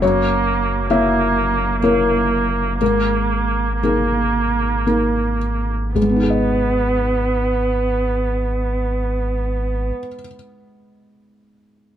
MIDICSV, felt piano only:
0, 0, Header, 1, 2, 480
1, 0, Start_track
1, 0, Key_signature, 5, "minor"
1, 0, Tempo, 904977
1, 10, Time_signature, 3, 2, 24, 8
1, 970, Tempo, 998336
1, 1930, Tempo, 1065719
1, 5597, End_track
2, 0, Start_track
2, 0, Title_t, "Felt piano"
2, 0, Program_c, 0, 0
2, 0, Control_c, 0, 64, 127
2, 11, Note_on_c, 0, 42, 59
2, 11, Note_on_c, 0, 73, 84
2, 20, Control_c, 0, 64, 0
2, 104, Control_c, 0, 64, 127
2, 457, Note_off_c, 0, 73, 0
2, 464, Note_off_c, 0, 42, 0
2, 479, Note_on_c, 0, 58, 44
2, 479, Note_on_c, 0, 64, 44
2, 481, Note_on_c, 0, 76, 75
2, 482, Note_on_c, 0, 73, 47
2, 950, Note_off_c, 0, 58, 0
2, 950, Note_off_c, 0, 64, 0
2, 951, Note_off_c, 0, 73, 0
2, 951, Note_off_c, 0, 76, 0
2, 969, Note_on_c, 0, 58, 39
2, 973, Note_on_c, 0, 70, 63
2, 973, Note_on_c, 0, 73, 42
2, 974, Note_on_c, 0, 64, 38
2, 1419, Note_off_c, 0, 58, 0
2, 1421, Note_off_c, 0, 64, 0
2, 1421, Note_off_c, 0, 70, 0
2, 1421, Note_off_c, 0, 73, 0
2, 1444, Note_on_c, 0, 44, 45
2, 1444, Note_on_c, 0, 70, 61
2, 1448, Control_c, 0, 64, 0
2, 1522, Control_c, 0, 64, 127
2, 1914, Note_off_c, 0, 70, 0
2, 1918, Note_off_c, 0, 44, 0
2, 1933, Note_on_c, 0, 58, 31
2, 1933, Note_on_c, 0, 63, 34
2, 1934, Note_on_c, 0, 68, 41
2, 1936, Note_on_c, 0, 70, 36
2, 2383, Note_off_c, 0, 58, 0
2, 2384, Note_off_c, 0, 63, 0
2, 2385, Note_off_c, 0, 70, 0
2, 2397, Note_on_c, 0, 58, 31
2, 2399, Note_on_c, 0, 63, 32
2, 2401, Note_on_c, 0, 70, 35
2, 2628, Note_off_c, 0, 68, 0
2, 2871, Note_off_c, 0, 58, 0
2, 2871, Note_off_c, 0, 63, 0
2, 2872, Note_off_c, 0, 70, 0
2, 2887, Note_on_c, 0, 44, 37
2, 2890, Note_on_c, 0, 68, 49
2, 2901, Control_c, 0, 64, 0
2, 2918, Note_on_c, 0, 56, 37
2, 2952, Note_on_c, 0, 59, 37
2, 2983, Note_on_c, 0, 63, 36
2, 2992, Control_c, 0, 64, 127
2, 3007, Note_off_c, 0, 68, 0
2, 3014, Note_on_c, 0, 68, 35
2, 3045, Note_on_c, 0, 75, 36
2, 4707, Note_off_c, 0, 44, 0
2, 4737, Note_off_c, 0, 56, 0
2, 4771, Note_off_c, 0, 59, 0
2, 4802, Note_off_c, 0, 63, 0
2, 4833, Note_off_c, 0, 68, 0
2, 4865, Note_off_c, 0, 75, 0
2, 5597, End_track
0, 0, End_of_file